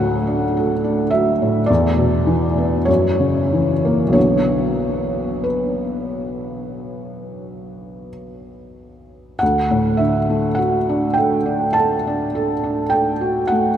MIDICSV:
0, 0, Header, 1, 2, 480
1, 0, Start_track
1, 0, Tempo, 1140684
1, 712, Tempo, 1188119
1, 1192, Tempo, 1279318
1, 1671, Time_signature, 4, 2, 24, 8
1, 1672, Tempo, 1312910
1, 3592, Tempo, 1174168
1, 5375, End_track
2, 0, Start_track
2, 0, Title_t, "Felt piano"
2, 0, Program_c, 0, 0
2, 0, Control_c, 0, 64, 127
2, 0, Note_on_c, 0, 38, 53
2, 0, Note_on_c, 0, 45, 33
2, 0, Note_on_c, 0, 54, 35
2, 0, Note_on_c, 0, 78, 75
2, 65, Note_off_c, 0, 45, 0
2, 113, Note_on_c, 0, 62, 36
2, 184, Note_off_c, 0, 54, 0
2, 239, Note_on_c, 0, 69, 41
2, 305, Note_off_c, 0, 62, 0
2, 354, Note_on_c, 0, 62, 38
2, 428, Note_off_c, 0, 69, 0
2, 465, Note_off_c, 0, 78, 0
2, 465, Note_on_c, 0, 76, 62
2, 479, Note_on_c, 0, 54, 32
2, 545, Note_off_c, 0, 62, 0
2, 597, Note_on_c, 0, 45, 36
2, 667, Note_off_c, 0, 54, 0
2, 697, Note_off_c, 0, 38, 0
2, 700, Note_on_c, 0, 74, 67
2, 708, Note_off_c, 0, 76, 0
2, 714, Note_off_c, 0, 45, 0
2, 715, Note_on_c, 0, 40, 46
2, 718, Control_c, 0, 64, 0
2, 774, Control_c, 0, 64, 127
2, 830, Note_on_c, 0, 47, 35
2, 945, Note_on_c, 0, 52, 39
2, 1020, Note_off_c, 0, 47, 0
2, 1070, Note_on_c, 0, 59, 33
2, 1141, Note_off_c, 0, 52, 0
2, 1179, Note_off_c, 0, 40, 0
2, 1181, Note_on_c, 0, 73, 60
2, 1186, Note_off_c, 0, 74, 0
2, 1193, Note_off_c, 0, 59, 0
2, 1194, Note_on_c, 0, 42, 43
2, 1199, Control_c, 0, 64, 0
2, 1257, Control_c, 0, 64, 127
2, 1311, Note_on_c, 0, 49, 32
2, 1436, Note_on_c, 0, 52, 32
2, 1501, Note_off_c, 0, 49, 0
2, 1555, Note_on_c, 0, 58, 34
2, 1626, Note_off_c, 0, 52, 0
2, 1643, Note_on_c, 0, 35, 37
2, 1654, Note_off_c, 0, 73, 0
2, 1658, Note_off_c, 0, 42, 0
2, 1659, Note_on_c, 0, 73, 57
2, 1661, Note_on_c, 0, 50, 26
2, 1666, Note_on_c, 0, 59, 29
2, 1670, Note_on_c, 0, 66, 29
2, 1675, Note_off_c, 0, 58, 0
2, 1677, Control_c, 0, 64, 0
2, 1744, Control_c, 0, 64, 127
2, 2138, Note_on_c, 0, 71, 43
2, 2147, Note_off_c, 0, 73, 0
2, 3108, Note_off_c, 0, 71, 0
2, 3562, Note_off_c, 0, 35, 0
2, 3571, Note_off_c, 0, 50, 0
2, 3573, Note_off_c, 0, 59, 0
2, 3576, Note_off_c, 0, 66, 0
2, 3584, Note_on_c, 0, 78, 67
2, 3597, Control_c, 0, 64, 0
2, 3598, Note_on_c, 0, 38, 43
2, 3654, Control_c, 0, 64, 127
2, 3714, Note_on_c, 0, 45, 36
2, 3821, Note_on_c, 0, 76, 53
2, 3830, Note_on_c, 0, 50, 34
2, 3832, Note_off_c, 0, 78, 0
2, 3909, Note_off_c, 0, 45, 0
2, 3954, Note_on_c, 0, 57, 35
2, 4026, Note_off_c, 0, 50, 0
2, 4056, Note_on_c, 0, 78, 58
2, 4069, Note_off_c, 0, 76, 0
2, 4072, Note_on_c, 0, 66, 39
2, 4146, Note_off_c, 0, 57, 0
2, 4197, Note_on_c, 0, 62, 40
2, 4263, Note_off_c, 0, 66, 0
2, 4297, Note_on_c, 0, 79, 56
2, 4303, Note_off_c, 0, 78, 0
2, 4313, Note_on_c, 0, 69, 36
2, 4386, Note_off_c, 0, 62, 0
2, 4428, Note_on_c, 0, 62, 42
2, 4505, Note_off_c, 0, 69, 0
2, 4540, Note_on_c, 0, 81, 69
2, 4545, Note_off_c, 0, 79, 0
2, 4553, Note_on_c, 0, 69, 44
2, 4624, Note_off_c, 0, 62, 0
2, 4679, Note_on_c, 0, 62, 40
2, 4747, Note_off_c, 0, 69, 0
2, 4793, Note_on_c, 0, 69, 42
2, 4869, Note_off_c, 0, 62, 0
2, 4911, Note_on_c, 0, 62, 37
2, 4985, Note_off_c, 0, 69, 0
2, 5017, Note_on_c, 0, 79, 62
2, 5026, Note_off_c, 0, 81, 0
2, 5029, Note_on_c, 0, 69, 39
2, 5102, Note_off_c, 0, 62, 0
2, 5144, Note_on_c, 0, 66, 40
2, 5221, Note_off_c, 0, 69, 0
2, 5253, Note_on_c, 0, 78, 64
2, 5262, Note_off_c, 0, 79, 0
2, 5271, Note_on_c, 0, 57, 37
2, 5338, Note_off_c, 0, 66, 0
2, 5375, Note_off_c, 0, 38, 0
2, 5375, Note_off_c, 0, 57, 0
2, 5375, Note_off_c, 0, 78, 0
2, 5375, End_track
0, 0, End_of_file